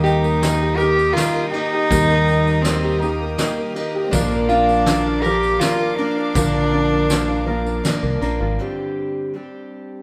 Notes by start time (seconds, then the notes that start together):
Already playing: D#2 D#3 G3 A#3 D#4 G4 A#4 G5 D#6
0.04 D#4 G4, tambourine
0.24 A#3, tambourine
0.41 G3 A#3 D#4 G4, snare, ride, tambourine
0.62 G4
0.77 D#3 D#4 G4 A#4, tambourine
0.81 A#3 G4
0.98 A#3, tambourine
1.13 G3 A#3 D#4 F4 A#4, snare, ride
1.18 D#4 G4, tambourine
1.35 A#3
1.50 D#4 G4, ride
1.54 A#3 D#4
1.73 G4
1.90 D#2 D#3 G3 A#3 D#4 G4, kick, ride, tambourine
2.10 A#3, tambourine
2.28 D#4, tambourine
2.47 A#3, tambourine
2.61 G3 A#3 C4 D#4, snare, ride, tambourine
2.66 D#4 G4
2.84 G4
2.99 D#3 A#3 D#4 G4, tambourine
3.21 A#3
3.38 G3 A#3 D#4 G4, snare, ride, tambourine
3.58 A#3
3.75 A#3 D#4 G4, ride
3.95 G4
4.04 G#3 C4
4.11 A#1 A#2 D3 F3 A#3 D4 F4 A#4 F5 D6, kick, ride, tambourine
4.31 A#3, tambourine
4.49 D4 F4, tambourine
4.69 A#3, tambourine
4.86 F3 A#3 D4 A#4, snare, ride, tambourine
5.07 F4
5.22 F3 G4 A#4, tambourine
5.26 F4
5.43 A#3, tambourine
5.59 F3 A#3 D4 F4 A#4, snare, ride, tambourine
5.80 A#3
5.96 F3 A#3 D4 F4 A#4, ride
6.17 F4
6.34 A#1 A#2 D3 F3 A#3 D4 F4 A#4, kick, ride, tambourine
6.54 A#3
6.73 D4
6.91 A#3
7.08 F3 A#3 D4 A#4, snare, ride, tambourine
7.28 F4
7.46 F3 A#3 D4 F4 A#4
7.65 A#3, tambourine
7.84 F3 A#3 D4 A#4, snare, ride, tambourine
8.03 C2 A#3
8.21 A#1 F3 A#3 D4 A#4, ride, tambourine
8.40 G#1 F4
8.59 G2 D3 G3 C4 D4 G4
9.34 G3 C4 D4 G4